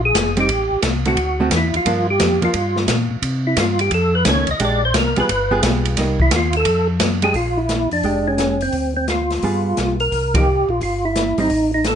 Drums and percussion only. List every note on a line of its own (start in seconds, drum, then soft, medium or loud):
0.15 kick soft
0.15 snare medium
0.15 hi-hat pedal medium
0.15 ride medium
0.37 ride medium
0.49 kick soft
0.49 ride medium
0.82 kick soft
0.82 snare medium
0.82 hi-hat pedal medium
0.82 ride medium
1.05 ride soft
1.17 kick soft
1.17 ride medium
1.51 kick soft
1.51 snare medium
1.51 hi-hat pedal medium
1.51 ride medium
1.74 ride medium
1.86 kick soft
1.86 ride medium
2.20 kick soft
2.20 snare medium
2.20 hi-hat pedal medium
2.20 ride medium
2.42 ride soft
2.54 kick soft
2.54 ride medium
2.76 snare soft
2.88 kick soft
2.88 snare medium
2.88 hi-hat pedal medium
2.88 ride medium
3.22 kick soft
3.22 ride medium
3.57 kick soft
3.57 snare medium
3.57 hi-hat pedal medium
3.57 ride medium
3.79 ride medium
3.91 kick soft
3.91 ride medium
4.25 kick soft
4.25 snare medium
4.25 hi-hat pedal medium
4.25 ride medium
4.47 ride medium
4.60 kick soft
4.60 ride medium
4.94 kick soft
4.94 snare medium
4.94 hi-hat pedal medium
4.94 ride medium
5.16 ride medium
5.29 kick soft
5.29 ride medium
5.63 kick soft
5.63 snare medium
5.63 hi-hat pedal medium
5.63 ride medium
5.85 ride medium
5.97 kick soft
5.97 snare soft
5.97 ride medium
6.20 kick medium
6.31 snare medium
6.31 hi-hat pedal medium
6.31 ride medium
6.53 ride medium
6.65 kick soft
6.65 ride medium
7.00 kick soft
7.00 snare medium
7.00 hi-hat pedal medium
7.00 ride medium
7.22 ride medium
7.34 kick soft
7.34 open hi-hat soft
7.69 snare medium
7.69 closed hi-hat soft
7.91 open hi-hat soft
8.03 kick soft
8.03 open hi-hat soft
8.38 snare medium
8.38 closed hi-hat soft
8.61 open hi-hat soft
8.72 kick soft
8.72 open hi-hat soft
9.08 snare medium
9.08 closed hi-hat soft
9.30 snare soft
9.30 open hi-hat soft
9.42 kick soft
9.42 open hi-hat soft
9.77 snare medium
9.77 closed hi-hat soft
10.00 open hi-hat soft
10.12 kick soft
10.12 open hi-hat soft
10.34 kick medium
10.34 ride medium
10.81 kick soft
10.81 open hi-hat soft
11.16 snare medium
11.16 closed hi-hat soft
11.38 open hi-hat soft
11.50 kick soft
11.50 open hi-hat soft
11.84 snare medium
11.84 closed hi-hat medium